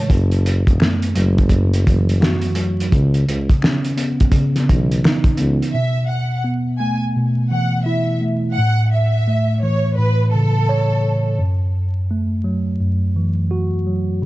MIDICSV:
0, 0, Header, 1, 5, 480
1, 0, Start_track
1, 0, Tempo, 705882
1, 67, Time_signature, 4, 2, 24, 8
1, 9693, End_track
2, 0, Start_track
2, 0, Title_t, "Violin section"
2, 0, Program_c, 0, 48
2, 3899, Note_on_c, 0, 76, 92
2, 4118, Note_off_c, 0, 76, 0
2, 4148, Note_on_c, 0, 78, 68
2, 4363, Note_off_c, 0, 78, 0
2, 4616, Note_on_c, 0, 80, 72
2, 4755, Note_off_c, 0, 80, 0
2, 5109, Note_on_c, 0, 78, 74
2, 5324, Note_off_c, 0, 78, 0
2, 5337, Note_on_c, 0, 76, 70
2, 5558, Note_off_c, 0, 76, 0
2, 5818, Note_on_c, 0, 78, 92
2, 6038, Note_off_c, 0, 78, 0
2, 6076, Note_on_c, 0, 76, 72
2, 6524, Note_off_c, 0, 76, 0
2, 6546, Note_on_c, 0, 73, 83
2, 6762, Note_off_c, 0, 73, 0
2, 6786, Note_on_c, 0, 71, 89
2, 7002, Note_off_c, 0, 71, 0
2, 7028, Note_on_c, 0, 69, 85
2, 7720, Note_off_c, 0, 69, 0
2, 9693, End_track
3, 0, Start_track
3, 0, Title_t, "Tine electric piano"
3, 0, Program_c, 1, 4
3, 0, Control_c, 1, 64, 127
3, 0, Note_on_c, 1, 49, 74
3, 0, Note_on_c, 1, 56, 73
3, 0, Note_on_c, 1, 73, 102
3, 62, Note_on_c, 1, 42, 91
3, 68, Note_off_c, 1, 73, 0
3, 69, Note_off_c, 1, 49, 0
3, 74, Control_c, 1, 64, 0
3, 79, Note_off_c, 1, 56, 0
3, 185, Control_c, 1, 64, 127
3, 551, Note_on_c, 1, 57, 81
3, 781, Note_on_c, 1, 54, 92
3, 1015, Note_off_c, 1, 42, 0
3, 1023, Note_on_c, 1, 42, 73
3, 1269, Note_on_c, 1, 52, 78
3, 1504, Note_on_c, 1, 66, 104
3, 1738, Note_off_c, 1, 54, 0
3, 1746, Note_on_c, 1, 54, 82
3, 1985, Note_off_c, 1, 42, 0
3, 1986, Note_off_c, 1, 54, 0
3, 1986, Note_off_c, 1, 66, 0
3, 1988, Note_off_c, 1, 52, 0
3, 1989, Note_off_c, 1, 57, 0
3, 1990, Note_on_c, 1, 49, 90
3, 1995, Control_c, 1, 64, 0
3, 2105, Control_c, 1, 64, 127
3, 2467, Note_on_c, 1, 61, 83
3, 2701, Note_on_c, 1, 59, 86
3, 2934, Note_off_c, 1, 49, 0
3, 2942, Note_on_c, 1, 49, 80
3, 3187, Note_on_c, 1, 52, 72
3, 3430, Note_on_c, 1, 63, 107
3, 3653, Note_off_c, 1, 59, 0
3, 3661, Note_on_c, 1, 59, 76
3, 3904, Note_off_c, 1, 49, 0
3, 3904, Note_off_c, 1, 59, 0
3, 3905, Note_on_c, 1, 47, 84
3, 3907, Note_off_c, 1, 52, 0
3, 3907, Note_off_c, 1, 61, 0
3, 3908, Note_off_c, 1, 63, 0
3, 3914, Control_c, 1, 64, 0
3, 4041, Control_c, 1, 64, 127
3, 4381, Note_on_c, 1, 59, 84
3, 4626, Note_on_c, 1, 57, 82
3, 4859, Note_off_c, 1, 47, 0
3, 4867, Note_on_c, 1, 47, 72
3, 5108, Note_on_c, 1, 52, 77
3, 5345, Note_on_c, 1, 64, 92
3, 5577, Note_off_c, 1, 57, 0
3, 5585, Note_on_c, 1, 57, 68
3, 5824, Note_off_c, 1, 59, 0
3, 5826, Note_off_c, 1, 57, 0
3, 5826, Note_off_c, 1, 64, 0
3, 5827, Note_off_c, 1, 47, 0
3, 5827, Note_off_c, 1, 52, 0
3, 5831, Note_on_c, 1, 45, 84
3, 5837, Control_c, 1, 64, 0
3, 5961, Control_c, 1, 64, 127
3, 6308, Note_on_c, 1, 57, 76
3, 6547, Note_on_c, 1, 52, 86
3, 6778, Note_off_c, 1, 45, 0
3, 6786, Note_on_c, 1, 45, 66
3, 7033, Note_on_c, 1, 49, 70
3, 7270, Note_on_c, 1, 73, 102
3, 7744, Note_on_c, 1, 42, 85
3, 7746, Note_off_c, 1, 45, 0
3, 7747, Note_off_c, 1, 52, 0
3, 7748, Note_off_c, 1, 57, 0
3, 7749, Note_off_c, 1, 73, 0
3, 7750, Note_off_c, 1, 49, 0
3, 7755, Control_c, 1, 64, 0
3, 7857, Control_c, 1, 64, 127
3, 8232, Note_on_c, 1, 57, 79
3, 8460, Note_on_c, 1, 54, 89
3, 8698, Note_off_c, 1, 42, 0
3, 8706, Note_on_c, 1, 42, 71
3, 8950, Note_on_c, 1, 52, 75
3, 9186, Note_on_c, 1, 66, 94
3, 9419, Note_off_c, 1, 54, 0
3, 9427, Note_on_c, 1, 54, 73
3, 9666, Note_off_c, 1, 42, 0
3, 9666, Note_off_c, 1, 66, 0
3, 9667, Note_off_c, 1, 54, 0
3, 9669, Note_off_c, 1, 52, 0
3, 9669, Note_off_c, 1, 57, 0
3, 9670, Note_on_c, 1, 49, 85
3, 9674, Control_c, 1, 64, 0
3, 9693, Note_off_c, 1, 49, 0
3, 9693, End_track
4, 0, Start_track
4, 0, Title_t, "Tuba"
4, 0, Program_c, 2, 58
4, 69, Note_on_c, 2, 30, 108
4, 430, Note_off_c, 2, 30, 0
4, 458, Note_on_c, 2, 28, 90
4, 539, Note_off_c, 2, 28, 0
4, 790, Note_on_c, 2, 30, 100
4, 1241, Note_off_c, 2, 30, 0
4, 1273, Note_on_c, 2, 30, 98
4, 1488, Note_off_c, 2, 30, 0
4, 1989, Note_on_c, 2, 37, 103
4, 2205, Note_off_c, 2, 37, 0
4, 2229, Note_on_c, 2, 37, 96
4, 2363, Note_off_c, 2, 37, 0
4, 3193, Note_on_c, 2, 35, 95
4, 3407, Note_off_c, 2, 35, 0
4, 3670, Note_on_c, 2, 37, 96
4, 3803, Note_off_c, 2, 37, 0
4, 9693, End_track
5, 0, Start_track
5, 0, Title_t, "Drums"
5, 67, Note_on_c, 9, 36, 114
5, 70, Note_on_c, 9, 42, 85
5, 135, Note_off_c, 9, 36, 0
5, 138, Note_off_c, 9, 42, 0
5, 215, Note_on_c, 9, 42, 51
5, 283, Note_off_c, 9, 42, 0
5, 313, Note_on_c, 9, 42, 82
5, 381, Note_off_c, 9, 42, 0
5, 456, Note_on_c, 9, 36, 92
5, 461, Note_on_c, 9, 42, 51
5, 524, Note_off_c, 9, 36, 0
5, 529, Note_off_c, 9, 42, 0
5, 544, Note_on_c, 9, 26, 76
5, 556, Note_on_c, 9, 38, 112
5, 612, Note_off_c, 9, 26, 0
5, 624, Note_off_c, 9, 38, 0
5, 696, Note_on_c, 9, 42, 58
5, 764, Note_off_c, 9, 42, 0
5, 785, Note_on_c, 9, 42, 80
5, 853, Note_off_c, 9, 42, 0
5, 939, Note_on_c, 9, 42, 53
5, 942, Note_on_c, 9, 36, 95
5, 1007, Note_off_c, 9, 42, 0
5, 1010, Note_off_c, 9, 36, 0
5, 1015, Note_on_c, 9, 42, 90
5, 1016, Note_on_c, 9, 36, 95
5, 1083, Note_off_c, 9, 42, 0
5, 1084, Note_off_c, 9, 36, 0
5, 1180, Note_on_c, 9, 42, 63
5, 1248, Note_off_c, 9, 42, 0
5, 1272, Note_on_c, 9, 36, 96
5, 1274, Note_on_c, 9, 42, 85
5, 1340, Note_off_c, 9, 36, 0
5, 1342, Note_off_c, 9, 42, 0
5, 1422, Note_on_c, 9, 42, 47
5, 1490, Note_off_c, 9, 42, 0
5, 1512, Note_on_c, 9, 26, 74
5, 1515, Note_on_c, 9, 38, 124
5, 1580, Note_off_c, 9, 26, 0
5, 1583, Note_off_c, 9, 38, 0
5, 1643, Note_on_c, 9, 42, 56
5, 1711, Note_off_c, 9, 42, 0
5, 1735, Note_on_c, 9, 42, 77
5, 1803, Note_off_c, 9, 42, 0
5, 1906, Note_on_c, 9, 42, 52
5, 1974, Note_off_c, 9, 42, 0
5, 1987, Note_on_c, 9, 36, 112
5, 1990, Note_on_c, 9, 42, 81
5, 2055, Note_off_c, 9, 36, 0
5, 2058, Note_off_c, 9, 42, 0
5, 2135, Note_on_c, 9, 42, 53
5, 2203, Note_off_c, 9, 42, 0
5, 2234, Note_on_c, 9, 42, 78
5, 2302, Note_off_c, 9, 42, 0
5, 2376, Note_on_c, 9, 36, 90
5, 2382, Note_on_c, 9, 42, 52
5, 2444, Note_off_c, 9, 36, 0
5, 2450, Note_off_c, 9, 42, 0
5, 2463, Note_on_c, 9, 26, 78
5, 2476, Note_on_c, 9, 38, 117
5, 2531, Note_off_c, 9, 26, 0
5, 2544, Note_off_c, 9, 38, 0
5, 2615, Note_on_c, 9, 42, 58
5, 2683, Note_off_c, 9, 42, 0
5, 2704, Note_on_c, 9, 42, 81
5, 2772, Note_off_c, 9, 42, 0
5, 2858, Note_on_c, 9, 42, 54
5, 2861, Note_on_c, 9, 36, 97
5, 2926, Note_off_c, 9, 42, 0
5, 2929, Note_off_c, 9, 36, 0
5, 2935, Note_on_c, 9, 36, 94
5, 2935, Note_on_c, 9, 42, 93
5, 3003, Note_off_c, 9, 36, 0
5, 3003, Note_off_c, 9, 42, 0
5, 3099, Note_on_c, 9, 38, 34
5, 3099, Note_on_c, 9, 42, 62
5, 3167, Note_off_c, 9, 38, 0
5, 3167, Note_off_c, 9, 42, 0
5, 3192, Note_on_c, 9, 36, 96
5, 3193, Note_on_c, 9, 42, 89
5, 3260, Note_off_c, 9, 36, 0
5, 3261, Note_off_c, 9, 42, 0
5, 3342, Note_on_c, 9, 42, 48
5, 3410, Note_off_c, 9, 42, 0
5, 3430, Note_on_c, 9, 26, 76
5, 3435, Note_on_c, 9, 38, 126
5, 3498, Note_off_c, 9, 26, 0
5, 3503, Note_off_c, 9, 38, 0
5, 3563, Note_on_c, 9, 42, 56
5, 3564, Note_on_c, 9, 36, 106
5, 3631, Note_off_c, 9, 42, 0
5, 3632, Note_off_c, 9, 36, 0
5, 3654, Note_on_c, 9, 42, 72
5, 3722, Note_off_c, 9, 42, 0
5, 3825, Note_on_c, 9, 42, 50
5, 3893, Note_off_c, 9, 42, 0
5, 9693, End_track
0, 0, End_of_file